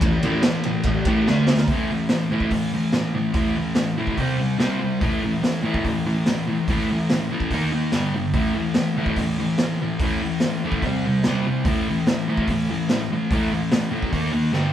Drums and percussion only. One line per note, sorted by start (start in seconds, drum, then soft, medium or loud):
0.01 kick loud
0.01 ride loud
0.23 ride medium
0.43 snare loud
0.43 ride medium
0.63 ride medium
0.83 kick medium
0.83 ride medium
1.05 kick medium
1.05 ride medium
1.27 snare medium
1.47 snare loud
1.58 snare loud
1.67 kick loud
1.67 open hi-hat medium
2.09 snare loud
2.09 open hi-hat medium
2.40 kick medium
2.51 kick medium
2.51 open hi-hat soft
2.93 snare loud
2.93 open hi-hat soft
3.33 kick loud
3.33 open hi-hat medium
3.75 snare loud
3.75 open hi-hat soft
4.07 kick medium
4.17 kick medium
4.17 open hi-hat soft
4.60 snare loud
4.60 open hi-hat soft
5.01 kick loud
5.01 open hi-hat medium
5.44 snare loud
5.44 open hi-hat medium
5.74 kick medium
5.85 kick medium
5.85 open hi-hat soft
6.26 snare loud
6.26 open hi-hat medium
6.68 kick loud
6.68 open hi-hat medium
7.10 snare loud
7.10 open hi-hat medium
7.40 kick medium
7.50 kick medium
7.50 open hi-hat soft
7.92 snare loud
7.92 open hi-hat medium
8.33 kick loud
8.33 open hi-hat medium
8.74 snare loud
8.74 open hi-hat medium
9.06 kick medium
9.16 kick medium
9.16 open hi-hat medium
9.58 snare loud
9.58 open hi-hat medium
9.99 kick loud
9.99 open hi-hat medium
10.40 snare loud
10.40 open hi-hat medium
10.72 kick medium
10.82 kick medium
10.82 open hi-hat soft
11.24 snare loud
11.24 open hi-hat soft
11.65 kick loud
11.65 open hi-hat medium
12.07 snare loud
12.07 open hi-hat soft
12.37 kick medium
12.47 kick medium
12.47 open hi-hat soft
12.89 snare loud
12.89 open hi-hat medium
13.31 kick loud
13.31 open hi-hat medium
13.72 snare loud
13.72 open hi-hat medium
14.02 kick medium
14.12 kick medium
14.12 open hi-hat medium
14.53 snare medium